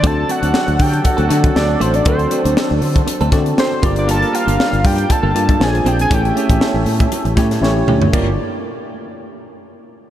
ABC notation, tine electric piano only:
X:1
M:4/4
L:1/8
Q:"Swing 16ths" 1/4=118
K:Gm
V:1 name="Tine electric piano"
[CD^FAd]2 z3 [CDFAd]2 z | [CD^FAd]2 z3 [CDFAd]2 [B,D=FGd]- | [B,DFGd]2 z3 [B,DFGd] [B,DF_Ac]2 | [A,^C=EG^c]2 z3 [A,CEGc] [A,CEGc]2 |
[B,DFGd] z6 z |]